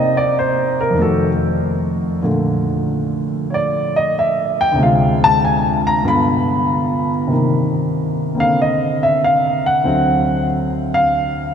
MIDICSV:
0, 0, Header, 1, 2, 480
1, 0, Start_track
1, 0, Tempo, 633580
1, 1696, Time_signature, 4, 2, 24, 8
1, 8744, End_track
2, 0, Start_track
2, 0, Title_t, "Grand piano"
2, 0, Program_c, 0, 0
2, 0, Note_on_c, 0, 48, 59
2, 0, Note_on_c, 0, 58, 57
2, 0, Note_on_c, 0, 60, 55
2, 0, Note_on_c, 0, 63, 68
2, 0, Note_on_c, 0, 75, 83
2, 117, Note_off_c, 0, 75, 0
2, 130, Note_on_c, 0, 74, 91
2, 262, Note_off_c, 0, 74, 0
2, 295, Note_on_c, 0, 72, 78
2, 596, Note_off_c, 0, 72, 0
2, 611, Note_on_c, 0, 70, 84
2, 686, Note_on_c, 0, 41, 51
2, 712, Note_off_c, 0, 48, 0
2, 716, Note_on_c, 0, 51, 48
2, 725, Note_off_c, 0, 58, 0
2, 740, Note_off_c, 0, 60, 0
2, 743, Note_off_c, 0, 70, 0
2, 743, Note_on_c, 0, 57, 50
2, 754, Note_off_c, 0, 63, 0
2, 769, Note_on_c, 0, 69, 81
2, 772, Note_on_c, 0, 66, 59
2, 958, Note_off_c, 0, 69, 0
2, 1671, Note_off_c, 0, 41, 0
2, 1679, Note_off_c, 0, 57, 0
2, 1685, Note_on_c, 0, 46, 53
2, 1686, Note_off_c, 0, 51, 0
2, 1691, Note_on_c, 0, 53, 48
2, 1691, Note_on_c, 0, 57, 46
2, 1695, Note_on_c, 0, 50, 59
2, 1714, Note_off_c, 0, 66, 0
2, 2654, Note_on_c, 0, 73, 57
2, 2684, Note_on_c, 0, 74, 84
2, 2686, Note_off_c, 0, 73, 0
2, 2991, Note_off_c, 0, 74, 0
2, 3003, Note_on_c, 0, 75, 85
2, 3139, Note_off_c, 0, 75, 0
2, 3173, Note_on_c, 0, 76, 80
2, 3476, Note_off_c, 0, 76, 0
2, 3491, Note_on_c, 0, 79, 98
2, 3577, Note_on_c, 0, 38, 62
2, 3606, Note_on_c, 0, 48, 56
2, 3611, Note_off_c, 0, 46, 0
2, 3613, Note_off_c, 0, 57, 0
2, 3614, Note_off_c, 0, 53, 0
2, 3616, Note_off_c, 0, 50, 0
2, 3623, Note_off_c, 0, 79, 0
2, 3631, Note_on_c, 0, 56, 58
2, 3658, Note_on_c, 0, 77, 72
2, 3660, Note_on_c, 0, 65, 64
2, 3959, Note_off_c, 0, 77, 0
2, 3969, Note_on_c, 0, 81, 118
2, 4103, Note_off_c, 0, 81, 0
2, 4126, Note_on_c, 0, 80, 86
2, 4432, Note_off_c, 0, 80, 0
2, 4446, Note_on_c, 0, 82, 97
2, 4556, Note_off_c, 0, 38, 0
2, 4570, Note_off_c, 0, 48, 0
2, 4571, Note_off_c, 0, 65, 0
2, 4571, Note_on_c, 0, 43, 57
2, 4574, Note_on_c, 0, 50, 51
2, 4579, Note_on_c, 0, 59, 52
2, 4581, Note_off_c, 0, 82, 0
2, 4582, Note_on_c, 0, 65, 65
2, 4583, Note_off_c, 0, 56, 0
2, 4605, Note_on_c, 0, 83, 89
2, 5371, Note_off_c, 0, 83, 0
2, 5512, Note_on_c, 0, 48, 51
2, 5526, Note_on_c, 0, 58, 46
2, 5533, Note_off_c, 0, 43, 0
2, 5534, Note_off_c, 0, 50, 0
2, 5537, Note_off_c, 0, 59, 0
2, 5538, Note_off_c, 0, 65, 0
2, 5549, Note_on_c, 0, 51, 56
2, 6314, Note_off_c, 0, 58, 0
2, 6325, Note_on_c, 0, 58, 47
2, 6337, Note_on_c, 0, 60, 41
2, 6346, Note_on_c, 0, 50, 49
2, 6365, Note_on_c, 0, 77, 97
2, 6500, Note_off_c, 0, 77, 0
2, 6528, Note_on_c, 0, 75, 83
2, 6833, Note_off_c, 0, 75, 0
2, 6842, Note_on_c, 0, 76, 88
2, 6978, Note_off_c, 0, 76, 0
2, 7004, Note_on_c, 0, 77, 85
2, 7311, Note_off_c, 0, 77, 0
2, 7321, Note_on_c, 0, 78, 88
2, 7443, Note_off_c, 0, 48, 0
2, 7446, Note_off_c, 0, 50, 0
2, 7449, Note_off_c, 0, 58, 0
2, 7452, Note_off_c, 0, 60, 0
2, 7453, Note_on_c, 0, 38, 49
2, 7457, Note_on_c, 0, 50, 47
2, 7461, Note_off_c, 0, 51, 0
2, 7461, Note_on_c, 0, 54, 47
2, 7464, Note_on_c, 0, 60, 57
2, 7911, Note_off_c, 0, 78, 0
2, 8290, Note_on_c, 0, 77, 98
2, 8727, Note_off_c, 0, 77, 0
2, 8744, Note_off_c, 0, 38, 0
2, 8744, Note_off_c, 0, 50, 0
2, 8744, Note_off_c, 0, 54, 0
2, 8744, Note_off_c, 0, 60, 0
2, 8744, End_track
0, 0, End_of_file